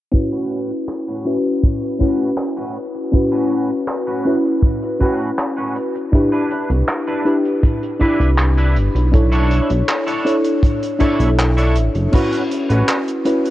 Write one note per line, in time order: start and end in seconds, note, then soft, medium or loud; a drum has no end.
0.12 1.20 C#4 medium
0.12 1.21 E4 medium
0.12 1.21 F#4 medium
0.12 1.22 B4 medium
0.12 kick loud
0.12 closed hi-hat loud
0.32 0.70 A2 medium
0.32 0.70 C#4 medium
0.32 0.70 F#4 medium
0.32 0.70 B4 loud
0.32 closed hi-hat medium
0.51 closed hi-hat medium
0.70 closed hi-hat soft
0.89 clap loud
0.89 closed hi-hat medium
1.07 1.35 A2 medium
1.07 1.35 C#4 medium
1.07 1.35 F#4 medium
1.07 1.36 B4 medium
1.07 closed hi-hat soft
1.25 1.37 C#4 medium
1.25 1.37 E4 medium
1.25 1.37 F#4 medium
1.25 1.37 B4 medium
1.25 closed hi-hat medium
1.45 closed hi-hat medium
1.63 muted clean electric guitar stroke soft
1.63 kick loud
1.63 closed hi-hat medium
1.83 closed hi-hat medium
1.99 2.29 A2 loud
1.99 3.08 C#4 medium
1.99 2.29 C#4 medium
1.99 3.08 E4 medium
1.99 2.29 F#4 medium
1.99 3.09 F#4 medium
1.99 2.29 B4 loud
1.99 3.09 B4 medium
1.99 kick medium
2.20 closed hi-hat medium
2.38 clap loud
2.38 closed hi-hat medium
2.57 2.76 A2 medium
2.57 2.76 C#4 medium
2.57 2.76 F#4 medium
2.57 2.76 B4 medium
2.57 closed hi-hat soft
2.77 closed hi-hat medium
2.95 muted clean electric guitar stroke soft
2.95 closed hi-hat soft
3.12 4.21 C#4 medium
3.12 4.21 E4 medium
3.12 4.22 F#4 medium
3.12 4.22 B4 medium
3.12 kick loud
3.12 closed hi-hat medium
3.32 3.70 A2 medium
3.32 3.70 C#4 medium
3.32 3.70 F#4 medium
3.32 3.70 B4 loud
3.32 closed hi-hat medium
3.51 closed hi-hat medium
3.70 closed hi-hat medium
3.88 clap loud
3.88 closed hi-hat loud
4.07 4.35 A2 medium
4.07 4.35 C#4 medium
4.07 4.35 F#4 medium
4.07 4.35 B4 medium
4.07 closed hi-hat soft
4.25 4.96 C#4 medium
4.25 4.96 E4 medium
4.25 4.97 F#4 medium
4.25 4.97 B4 medium
4.25 closed hi-hat medium
4.45 closed hi-hat medium
4.63 muted clean electric guitar stroke soft
4.63 kick loud
4.63 closed hi-hat loud
4.82 closed hi-hat medium
5.00 5.29 A2 loud
5.00 6.08 C#4 medium
5.00 5.29 C#4 medium
5.00 6.09 E4 medium
5.00 5.29 F#4 medium
5.00 6.09 F#4 medium
5.00 5.29 B4 loud
5.00 6.10 B4 medium
5.00 kick medium
5.00 closed hi-hat medium
5.20 closed hi-hat medium
5.38 clap loud
5.38 closed hi-hat medium
5.57 5.76 A2 medium
5.57 5.76 C#4 medium
5.57 5.76 F#4 medium
5.57 5.76 B4 medium
5.57 closed hi-hat medium
5.76 closed hi-hat medium
5.95 muted clean electric guitar stroke soft
5.95 closed hi-hat medium
6.12 7.21 D4 medium
6.12 7.21 E4 medium
6.12 7.22 G4 medium
6.12 7.22 B4 medium
6.12 kick loud
6.12 closed hi-hat medium
6.32 6.70 D4 medium
6.32 6.70 E4 medium
6.32 6.70 B4 loud
6.32 closed hi-hat medium
6.51 closed hi-hat medium
6.70 6.83 C2 medium
6.70 closed hi-hat medium
6.88 clap loud
6.88 closed hi-hat loud
7.07 7.35 D4 medium
7.07 7.35 E4 medium
7.07 7.35 B4 medium
7.07 closed hi-hat medium
7.25 7.37 D4 medium
7.25 7.37 E4 medium
7.25 7.37 G4 medium
7.25 7.37 B4 medium
7.25 closed hi-hat medium
7.45 closed hi-hat medium
7.63 muted clean electric guitar stroke soft
7.63 kick loud
7.63 closed hi-hat medium
7.83 closed hi-hat medium
7.99 9.08 D4 medium
7.99 8.29 D4 loud
7.99 9.09 E4 medium
7.99 8.29 E4 medium
7.99 9.09 G4 medium
7.99 8.29 B4 loud
7.99 9.10 B5 medium
7.99 kick medium
7.99 closed hi-hat medium
8.20 8.77 C2 medium
8.20 closed hi-hat medium
8.38 clap loud
8.38 closed hi-hat medium
8.57 8.76 D4 medium
8.57 8.76 E4 medium
8.57 8.76 B4 loud
8.57 closed hi-hat medium
8.76 8.89 G1 medium
8.76 closed hi-hat medium
8.95 9.61 B1 loud
8.95 muted clean electric guitar stroke soft
8.95 closed hi-hat medium
9.12 10.21 D4 medium
9.12 10.21 E4 medium
9.12 10.22 A4 medium
9.12 10.22 C#5 medium
9.12 kick loud
9.12 closed hi-hat loud
9.32 9.70 D4 loud
9.32 9.70 E4 loud
9.32 9.70 A4 medium
9.32 9.70 C#5 loud
9.32 closed hi-hat medium
9.51 closed hi-hat medium
9.70 9.83 B1 loud
9.70 closed hi-hat medium
9.88 clap loud
9.88 closed hi-hat medium
10.07 10.35 D4 medium
10.07 10.35 E4 medium
10.07 10.35 A4 medium
10.07 10.35 C#5 medium
10.07 closed hi-hat medium
10.25 10.96 D4 medium
10.25 10.96 E4 medium
10.25 10.96 A4 medium
10.25 10.97 C#5 medium
10.25 closed hi-hat medium
10.44 closed hi-hat medium
10.63 muted clean electric guitar stroke soft
10.63 kick loud
10.63 closed hi-hat medium
10.83 closed hi-hat medium
10.99 12.08 D4 medium
10.99 11.29 D4 loud
10.99 12.08 E4 medium
10.99 11.29 E4 loud
10.99 11.29 A4 medium
10.99 12.09 A4 medium
10.99 11.29 C#5 loud
10.99 12.09 E5 loud
10.99 kick medium
10.99 closed hi-hat medium
11.20 11.77 B1 medium
11.20 closed hi-hat medium
11.38 clap loud
11.38 closed hi-hat medium
11.57 11.76 D4 medium
11.57 11.76 E4 medium
11.57 11.76 A4 medium
11.57 11.76 C#5 medium
11.57 closed hi-hat medium
11.75 11.89 A1 loud
11.75 closed hi-hat medium
11.95 12.08 F#1 loud
11.95 muted clean electric guitar stroke soft
11.95 closed hi-hat medium
12.12 13.21 C#4 medium
12.12 12.41 C#4 loud
12.12 13.21 E4 medium
12.12 12.41 F#4 loud
12.12 13.22 F#4 medium
12.12 12.42 B4 loud
12.12 13.22 B4 medium
12.12 kick loud
12.12 closed hi-hat medium
12.12 crash medium
12.32 closed hi-hat medium
12.51 closed hi-hat medium
12.69 12.83 A1 loud
12.69 12.98 C#4 medium
12.69 12.98 F#4 medium
12.69 12.98 B4 loud
12.69 closed hi-hat medium
12.88 clap loud
12.88 closed hi-hat medium
13.08 closed hi-hat medium
13.25 13.37 C#4 medium
13.25 13.37 E4 medium
13.25 13.37 F#4 medium
13.25 13.37 B4 medium
13.25 muted clean electric guitar stroke soft
13.25 closed hi-hat medium
13.45 closed hi-hat soft